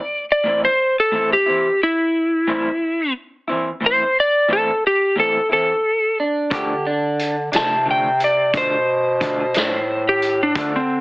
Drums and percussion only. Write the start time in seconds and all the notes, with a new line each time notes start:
6.51 kick, closed hi-hat
7.19 closed hi-hat
7.53 snare, closed hi-hat
8.20 closed hi-hat
8.54 kick, closed hi-hat
9.21 kick, closed hi-hat
9.54 snare, closed hi-hat
10.22 closed hi-hat
10.55 kick, closed hi-hat